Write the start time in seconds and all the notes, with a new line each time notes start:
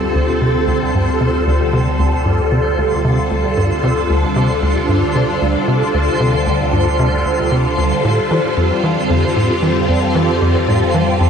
Already playing: D2 D3 G3 C4 F4 A4 C5
0.15 D2
0.41 C3
0.68 D2
0.94 G2
1.21 C3
1.47 D2
1.73 C3
1.99 D2
2.26 G2
2.52 C3
2.78 D2
3.05 C3
3.31 D2
3.57 G2
3.83 C3
4.06 D2 D4
4.36 C3
4.62 D2
4.89 G2
5.15 C3
5.41 D2
5.68 C3
5.94 D2
6.20 C3
6.47 D2
6.73 G2
6.99 C3
7.25 D2
7.52 C3
7.78 D2
8.05 F2 A2
8.31 E3
8.57 F2
8.62 C4
8.84 E3
9.10 F2
9.36 A2
9.62 E3
9.89 F2
10.15 E3
10.42 F2
10.68 A2
10.94 E3
11.20 F2